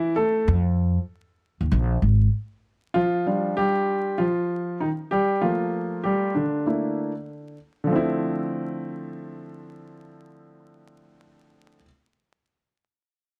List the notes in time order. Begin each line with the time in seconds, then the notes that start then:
Already playing: E3 C4 E4
0.16 A3 A4
0.48 F2
1.61 D#2
1.72 A#1
2.02 G#1
2.94 F3 F4
3.26 G3 D4 F4
3.57 G3 G4
4.18 F3 F4
4.80 D#3 D#4
5.11 G3 G4
5.41 F3 A3 A#3 F4
6.04 G3 G4
6.35 D3 D4
6.66 A3 A#3 D4 E4
7.84 D3 F3
7.90 A3 C4
7.96 E4